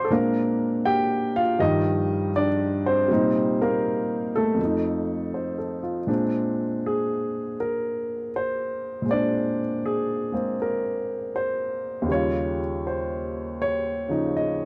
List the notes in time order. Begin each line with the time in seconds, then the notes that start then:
Already playing: F3 C4 G4 A4 C5 D5 C6 C#6 D6
0.04 A4
0.10 A#2 G#3 A#3 C4 D4 A#4
0.85 G4 G5
1.36 F4 F5
1.59 G2 D#3 F3 G3 D#4 D#5
2.36 D4 D5
2.86 C4 C5
3.08 A#2 C3 G3
3.13 D#4
3.62 A#3 A#4
4.36 A3 A4
4.54 F2 F3
4.62 A3 D#4
5.34 C5
5.58 A4
5.83 F4
6.07 A#2 G#3 C4 D4
6.86 G#4
7.60 A#4
8.36 C5
9.02 A#2 G#3
9.09 C4 D4 D5
9.85 G#4
10.32 G#3 A#3 C4
10.62 A#4
11.36 C5
12.02 D#2 C#3
12.09 G3 F4 C#5
12.87 C5
13.62 C#5
14.08 C#3 F3 D#4
14.37 D#5